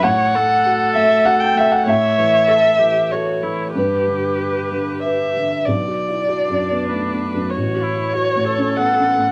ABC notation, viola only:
X:1
M:3/4
L:1/8
Q:1/4=97
K:Bm
V:1 name="Viola"
c A4- A | c2 A G F E | G4- G z | z2 D4 |
F E F A3 |]